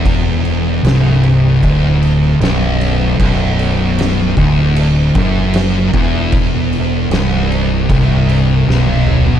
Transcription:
<<
  \new Staff \with { instrumentName = "Distorted electric guitar" } { \clef bass \time 4/4 \key b \minor \tempo 4 = 77 e,4 c,4 d,4 b,,4 | b,,4. d,4 fis,4 e,8~ | e,4 c,4 c,4 b,,4 | }
  \new Staff \with { instrumentName = "Fingered electric bass" } { \clef bass \time 4/4 \key b \minor e,,4 c,,4 d,,4 b,,,4 | b,,,4. d,,4 fis,,4 e,,8~ | e,,4 c,,4 c,,4 b,,,4 | }
  \new DrumStaff \with { instrumentName = "Drums" } \drummode { \time 4/4 <cymc bd>8 cymc8 <cymc sn>8 cymc8 <cymc bd>8 cymc8 <cymc sn>8 cymc8 | <cymc bd>8 cymc8 <cymc sn>8 <cymc bd>8 cymc8 <cymc bd>8 <cymc sn>8 <cymc bd>8 | <cymc bd>8 cymc8 <cymc sn>8 cymc8 <cymc bd>8 cymc8 sn16 tommh16 toml16 tomfh16 | }
>>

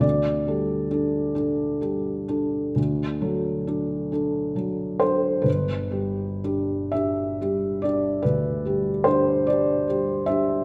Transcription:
\new Staff \with { instrumentName = "Felt piano" } { \time 12/8 \key g \major \tempo 4. = 45 << { d''1~ d''4. c''8 | b'4. e''4 d''8 b'4 c''8 d''4 e''8 | } \\ { d,8 <g a'>8 <d' a'>8 <d' a'>8 <g a'>8 <d' a'>8 d,8 <fis a'>8 <d' a'>8 <d' a'>8 <fis a'>8 <d' a'>8 | g,,8 <g g'>8 <d' g'>8 <d' g'>8 <g g'>8 <d' g'>8 d,8 <g g'>8 <d' g'>8 <d' g'>8 <g g'>8 <d' g'>8 | } >> }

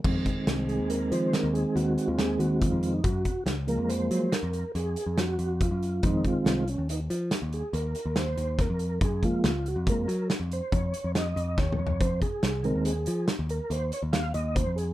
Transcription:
<<
  \new Staff \with { instrumentName = "Tonewheel organ" } { \time 7/4 \key f \phrygian \tempo 4 = 140 r4. aes'8 bes'8 c''8 bes'8 aes'8 ges'8. f'16 aes'8 ges'8 f'8. ees'16 | ges'4 r8 bes'8 c''4 bes'4 aes'4 ges'4 f'4 | ees'8 f'4 des'8 ees'8 r4 aes'8 bes'4 c''4 bes'4 | aes'8 f'4 ges'8 bes'4 r8 c''8 des''4 ees''4 des''4 |
c''8 aes'4 bes'8 aes'4 r8 bes'8 c''8 des''8 f''8 ees''8 c''8 aes'8 | }
  \new Staff \with { instrumentName = "Tonewheel organ" } { \clef bass \time 7/4 \key f \phrygian <ees aes c'>1.~ <ees aes c'>4 | r4. <f aes bes>4. r1 | <ees aes c'>4. r1 r4. | r8 <f aes bes>8 r4 <f aes bes>8 r1 r8 |
r4. <ees aes c'>8 r1 r4 | }
  \new Staff \with { instrumentName = "Picked electric bass" } { \clef bass \time 7/4 \key f \phrygian f,8 r8 c,8. ees,8. f8 r16 ees,8 r16 ees,8 r16 ees,8. ees,8. f,8. | ges,8 r8 des,8. f,8. ges8 r16 f,8 r16 f,8 r16 f,8. f,8. ges,8. | f,8 r8 c,8. ees,8. f8 r16 ees,8 r16 ees,8 r16 ees,8. ees,8. f,8. | ges,8 r8 des,8. f,8. ges8 r16 f,8 r16 f,8 r16 f,8. f,8 ees,8 f,8 |
f,8 r8 c,8. ees,8. f8 r16 ees,8 r16 ees,8 r16 ees,8. ees,8. f,8. | }
  \new DrumStaff \with { instrumentName = "Drums" } \drummode { \time 7/4 <cymc bd>8 <hh bd>8 <hh sn>8 hh8 hh8 hh8 <hh sn>8 hh8 hh8 hh8 <hh sn>8 hh8 <hh bd>8 hh8 | <hh bd>8 <hh bd>8 <hh sn>8 hh8 hh8 hh8 <hh sn>8 hh8 hh8 hh8 <hh sn>8 hh8 <hh bd>8 hh8 | <hh bd>8 <hh bd>8 <hh sn>8 hh8 hh8 hh8 <hh sn>8 hh8 hh8 hh8 <hh sn>8 hh8 <hh bd sn>8 hh8 | <hh bd>8 <hh bd>8 <hh sn>8 hh8 <hh bd>8 hh8 <hh sn>8 hh8 <hh bd>8 hh8 <hh sn>8 hh8 \tuplet 3/2 { <bd sn>8 toml8 tomfh8 } |
<hh bd>8 <hh bd>8 <hh sn>8 hh8 hh8 hh8 <hh sn>8 hh8 hh8 hh8 <hh sn>8 hh8 <hh bd>8 hh8 | }
>>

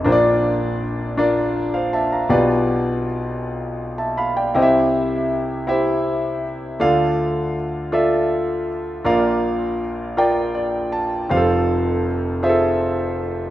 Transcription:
<<
  \new Staff \with { instrumentName = "Grand piano" } { \time 6/8 \key d \minor \tempo 4. = 53 << { r2 r16 <c'' f''>16 <e'' a''>16 <f'' bes''>16~ | <f'' bes''>16 r2 <e'' a''>16 <f'' b''>16 <d'' g''>16~ | <d'' g''>16 r2 r8. | r2. |
r2 d''8 a''8 | r2. | } \\ { <d' f' bes' c'' d''>4 r8 <d' f' bes' d''>4 r8 | <f' g' b' d''>4 r2 | <e' g' c'' ees'' e''>4 r8 <e' g' c'' e''>4 r8 | <f' a' d'' f''>4 r8 <f' a' d'' e''>4 r8 |
<f' bes' d'' f''>4 r8 <f' bes' d'' g''>4 r8 | <f' g' a' c'' f''>4 r8 <f' aes' a' c'' e''>4 r8 | } >> }
  \new Staff \with { instrumentName = "Grand piano" } { \clef bass \time 6/8 \key d \minor <bes,, bes,>2. | <b,, b,>2. | <c, c>2. | <d, d>2. |
<bes,, bes,>2. | <f,, f,>2. | }
>>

